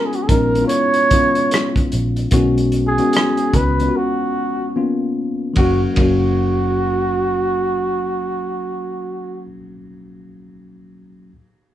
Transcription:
0.00 0.24 D#3 medium
0.00 0.24 G#3 medium
0.00 0.24 B3 medium
0.00 0.24 C#4 medium
0.00 0.25 F4 medium
0.06 0.17 G#4 medium
0.13 0.24 F#4 medium
0.13 closed hi-hat soft
0.23 0.30 G#4 medium
0.28 0.63 A#1 medium
0.28 0.53 D#3 medium
0.28 0.54 G#3 medium
0.28 0.54 B3 medium
0.28 0.54 C#4 medium
0.28 0.54 D#4 medium
0.28 0.67 A#4 medium
0.28 kick medium
0.28 closed hi-hat medium
0.55 1.08 D#3 medium
0.55 1.08 G#3 soft
0.55 1.09 B3 soft
0.55 1.09 C#4 soft
0.55 0.61 E4 soft
0.55 closed hi-hat soft
0.65 1.12 F4 medium
0.65 1.86 C#5 medium
0.69 closed hi-hat medium
0.94 closed hi-hat soft
1.11 2.26 D#3 medium
1.11 2.27 G#3 medium
1.11 2.27 B3 medium
1.11 2.27 C#4 medium
1.11 2.28 F4 medium
1.11 kick medium
1.11 closed hi-hat medium
1.35 closed hi-hat soft
1.51 cross-stick medium
1.51 closed hi-hat medium
1.76 kick medium
1.76 closed hi-hat soft
1.92 2.25 A#1 medium
1.92 closed hi-hat medium
2.16 closed hi-hat soft
2.31 2.98 B1 medium
2.31 2.93 D#3 medium
2.31 2.93 G#3 medium
2.31 2.94 B3 medium
2.31 2.94 C#4 medium
2.31 2.94 F#4 loud
2.31 kick loud
2.31 closed hi-hat medium
2.58 closed hi-hat soft
2.72 closed hi-hat soft
2.87 3.57 G#4 medium
2.98 3.72 D#3 medium
2.98 3.72 G#3 medium
2.98 3.73 B3 medium
2.98 3.73 C#4 medium
2.98 3.73 F#4 medium
2.98 closed hi-hat soft
3.13 cross-stick loud
3.13 closed hi-hat medium
3.37 closed hi-hat soft
3.54 3.87 C#2 medium
3.54 3.98 B4 medium
3.54 kick medium
3.54 closed hi-hat medium
3.80 4.75 D#3 medium
3.80 4.76 G#3 soft
3.80 4.75 B3 soft
3.80 4.75 C#4 soft
3.80 3.85 F4 soft
3.80 closed hi-hat soft
3.89 4.80 F#4 medium
3.97 4.76 F#4 medium
4.76 5.52 D#3 medium
4.76 5.53 A#3 medium
4.76 5.53 B3 medium
4.76 5.53 C#4 medium
4.76 5.53 F4 medium
5.53 5.81 D#3 medium
5.53 5.82 F#3 medium
5.53 5.83 A#3 medium
5.53 5.83 F#4 medium
5.53 kick medium
5.53 ride medium
5.58 5.84 F#1 medium
5.58 5.85 C#4 medium
5.58 5.85 F#4 medium
5.94 9.43 D#3 medium
5.94 9.45 F#3 medium
5.94 kick medium
5.94 ride medium
5.98 9.48 F#1 medium
5.98 9.47 A#3 medium
5.98 9.49 C#4 medium
5.98 9.48 F#4 medium
6.02 9.51 F#4 medium

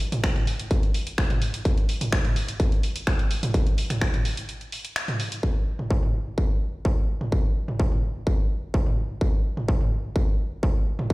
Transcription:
0.12 closed hi-hat medium
0.12 mid tom medium
0.24 finger snap loud
0.24 kick loud
0.24 closed hi-hat medium
0.36 closed hi-hat soft
0.36 mid tom medium
0.47 open hi-hat medium
0.59 closed hi-hat medium
0.71 kick loud
0.71 closed hi-hat medium
0.83 closed hi-hat soft
0.94 open hi-hat loud
1.07 closed hi-hat medium
1.18 finger snap loud
1.18 kick loud
1.18 closed hi-hat medium
1.30 closed hi-hat soft
1.30 mid tom medium
1.42 open hi-hat medium
1.54 closed hi-hat medium
1.65 kick loud
1.65 closed hi-hat medium
1.77 closed hi-hat soft
1.89 open hi-hat loud
2.01 closed hi-hat medium
2.01 mid tom medium
2.12 finger snap loud
2.12 kick loud
2.12 closed hi-hat medium
2.25 closed hi-hat soft
2.25 mid tom medium
2.36 open hi-hat medium
2.48 closed hi-hat medium
2.60 kick loud
2.60 closed hi-hat medium
2.72 closed hi-hat soft
2.83 open hi-hat loud
2.96 closed hi-hat medium
3.07 finger snap loud
3.07 kick loud
3.07 closed hi-hat medium
3.19 closed hi-hat soft
3.31 open hi-hat medium
3.43 closed hi-hat medium
3.43 mid tom loud
3.54 kick loud
3.54 closed hi-hat medium
3.67 closed hi-hat soft
3.78 open hi-hat loud
3.90 finger snap soft
3.90 closed hi-hat medium
3.90 mid tom medium
4.01 finger snap loud
4.01 kick loud
4.01 closed hi-hat medium
4.14 closed hi-hat soft
4.14 mid tom medium
4.25 open hi-hat medium
4.37 closed hi-hat medium
4.49 closed hi-hat medium
4.61 closed hi-hat soft
4.72 open hi-hat loud
4.85 closed hi-hat medium
4.96 finger snap loud
4.96 closed hi-hat medium
5.08 closed hi-hat soft
5.08 mid tom medium
5.20 open hi-hat medium
5.32 closed hi-hat medium
5.43 kick loud
5.79 mid tom medium
5.90 kick loud
6.03 mid tom medium
6.38 kick loud
6.85 kick loud
7.21 mid tom medium
7.32 kick loud
7.68 mid tom medium
7.80 kick loud
7.92 mid tom medium
8.27 kick loud
8.74 kick loud
8.86 mid tom medium
9.21 kick loud
9.57 mid tom medium
9.68 kick loud
9.81 mid tom medium
10.16 kick loud
10.63 kick loud
10.99 mid tom medium
11.10 kick loud

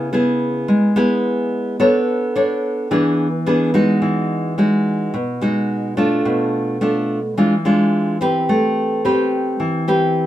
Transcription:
0.00 0.66 C#3 medium
0.13 0.92 B3 medium
0.13 0.92 E4 medium
0.13 0.92 G#4 medium
0.68 1.77 G#3 medium
0.96 1.75 B3 medium
0.96 1.75 E4 medium
0.96 1.76 G#4 medium
1.80 2.88 B3 medium
1.80 2.31 D4 medium
1.80 2.31 A4 medium
1.80 2.31 C#5 medium
2.35 2.87 D4 medium
2.35 2.87 A4 medium
2.35 2.87 C#5 medium
2.91 3.99 E3 medium
2.91 3.27 B3 medium
2.91 3.27 D4 medium
2.91 3.27 G#4 medium
3.46 3.70 B3 medium
3.46 3.70 D4 medium
3.46 3.70 G#4 medium
3.74 4.53 G#3 medium
3.74 4.53 D#4 medium
3.74 4.54 F#4 medium
4.02 5.11 E3 medium
4.58 5.13 G#3 medium
4.58 5.14 D#4 medium
4.58 5.14 F#4 medium
5.14 6.22 B2 medium
5.41 5.93 G#3 medium
5.41 5.93 D#4 medium
5.41 5.93 F#4 medium
5.97 6.76 A3 medium
5.97 6.77 D4 medium
5.97 6.77 F4 medium
6.25 7.34 B2 medium
6.81 7.18 A3 medium
6.81 7.19 D4 medium
6.81 7.19 F4 medium
7.37 8.46 E3 medium
7.37 7.53 G#3 medium
7.37 7.54 D4 medium
7.37 7.54 F4 medium
7.65 8.16 G#3 medium
7.65 8.16 D4 medium
7.65 8.17 F4 medium
8.21 9.00 C4 medium
8.21 9.00 G4 medium
8.21 9.00 B4 medium
8.49 9.57 A3 medium
9.05 9.84 C4 medium
9.05 9.84 G4 medium
9.05 9.84 B4 medium
9.60 10.27 E3 medium
9.88 10.27 C4 medium
9.88 10.27 G4 medium
9.88 10.27 B4 medium

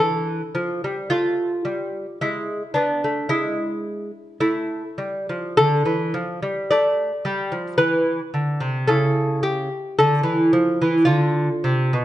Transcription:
0.00 0.40 E3 medium
0.00 1.08 A4 medium
0.55 0.82 F3 medium
0.84 1.11 G3 medium
1.10 1.51 A3 medium
1.10 2.17 F4 medium
1.65 2.05 G3 medium
2.21 2.61 G#3 medium
2.21 2.74 E4 medium
2.74 3.02 B3 medium
2.74 3.28 D4 medium
3.04 3.30 A3 soft
3.29 4.10 G#3 medium
3.29 4.37 E4 medium
4.40 4.82 A3 medium
4.40 5.52 E4 medium
4.98 5.26 G3 medium
5.29 5.56 F3 medium
5.57 5.85 D3 medium
5.57 6.67 A4 loud
5.85 6.13 E3 medium
6.14 6.41 F3 medium
6.42 6.69 G3 medium
6.71 7.11 A3 medium
6.71 7.76 D5 medium
7.25 7.51 G3 medium
7.52 7.78 F3 medium
7.78 8.19 E3 medium
7.78 8.85 B4 medium
8.34 8.61 D3 medium
8.60 8.88 C3 medium
8.87 9.68 C#3 medium
8.87 11.04 E4 soft
8.87 9.42 A4 medium
9.43 9.96 G4 medium
9.99 10.23 D3 medium
9.99 11.04 A4 medium
10.23 10.51 E3 medium
10.53 10.79 F3 medium
10.82 11.06 E3 medium
11.05 11.48 D3 medium
11.05 12.05 F4 medium
11.64 11.91 C3 medium
11.93 12.05 B2 medium

